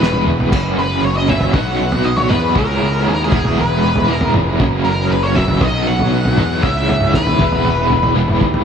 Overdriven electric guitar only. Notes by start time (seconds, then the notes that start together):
0.00 E3 G#3 B3 E4
0.52 F#2 C#3 F#3 A#3 C#4
1.28 F#2 C#3 F#3 A#3 C#4
1.54 B2 F#3 B3 D#4
2.30 B2 F#3 B3 D#4
2.56 C#3 G#3 C#4 E4
3.31 E3 G#3 B3 E4
4.08 E3 G#3 B3 E4
4.59 F#2 C#3 F#3 A#3 C#4
5.35 F#2 C#3 F#3 A#3 C#4
5.60 B2 F#3 B3 D#4
6.38 B2 F#3 B3 D#4
6.63 C#3 G#3 C#4 E4
7.40 E3 G#3 B3 E4
8.15 E3 G#3 B3 E4